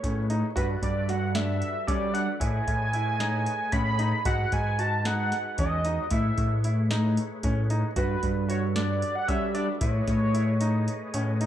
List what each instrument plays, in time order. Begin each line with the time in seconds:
Already playing: tonewheel organ A3 G#4 B4 C#5, analog synth lead C#5
0.03 analog synth bass A2, grand piano C#4, kick, snare, closed hi-hat
0.30 grand piano D#4, closed hi-hat
0.56 analog synth bass G2, tonewheel organ G3 F#4 A4 B4, grand piano F#4, analog synth lead B4, kick, closed hi-hat
0.82 analog synth bass G2, analog synth lead D5, kick, closed hi-hat
1.09 grand piano F#4, analog synth lead F#5, snare, closed hi-hat
1.35 grand piano D4, analog synth lead E5, snare, closed hi-hat
1.62 closed hi-hat
1.87 analog synth bass G3, grand piano C#4, analog synth lead D5, kick, closed hi-hat
2.14 grand piano D4, analog synth lead F#5, closed hi-hat
2.40 analog synth bass A2, tonewheel organ A3 G#4 B4 C#5 D#5, grand piano E4, analog synth lead G#5, kick, closed hi-hat
2.67 analog synth bass A2, kick, closed hi-hat
2.93 grand piano E4, closed hi-hat
3.20 grand piano D#4, snare, closed hi-hat
3.46 closed hi-hat
3.72 analog synth bass A2, grand piano C#4, analog synth lead B5, kick, snare, closed hi-hat
3.99 grand piano D#4, closed hi-hat
4.25 analog synth bass G#2, tonewheel organ G#3 D#4 F#4 B4, grand piano F#4, analog synth lead F#5, kick, closed hi-hat
4.52 analog synth bass G#2, analog synth lead G#5, kick, closed hi-hat
4.79 grand piano F#4, analog synth lead A5, closed hi-hat
5.05 grand piano D#4, analog synth lead F#5, snare, closed hi-hat
5.32 snare, closed hi-hat
5.58 analog synth bass E2, grand piano C#4, analog synth lead D#5, kick, closed hi-hat
5.85 grand piano D#4, snare, closed hi-hat
6.11 analog synth bass A2, tonewheel organ A3 G#4 B4 C#5, grand piano E4, analog synth lead E5, kick, closed hi-hat
6.38 analog synth bass A2, kick, closed hi-hat
6.64 grand piano E4, closed hi-hat
6.91 grand piano D#4, snare, closed hi-hat
7.17 closed hi-hat
7.43 analog synth bass A2, grand piano C#4, kick, closed hi-hat
7.70 grand piano D#4, closed hi-hat
7.96 analog synth bass G2, tonewheel organ G3 F#4 A4 B4, grand piano F#4, analog synth lead B4, kick, closed hi-hat
8.23 analog synth bass G2, kick, closed hi-hat
8.48 grand piano F#4, analog synth lead C#5, closed hi-hat
8.75 grand piano D4, analog synth lead D5, snare, closed hi-hat
9.02 closed hi-hat
9.15 analog synth lead F#5
9.28 analog synth bass G3, grand piano C#4, analog synth lead E5, kick, closed hi-hat
9.54 grand piano D4, analog synth lead D5, closed hi-hat
9.80 analog synth bass A2, tonewheel organ A3 G#4 B4 C#5 D#5, grand piano E4, analog synth lead C#5, kick, closed hi-hat
10.07 analog synth bass A2, kick, snare, closed hi-hat
10.34 grand piano E4, closed hi-hat
10.61 grand piano D#4, closed hi-hat
10.88 closed hi-hat
11.14 analog synth bass A2, grand piano C#4, closed hi-hat
11.41 grand piano D#4, closed hi-hat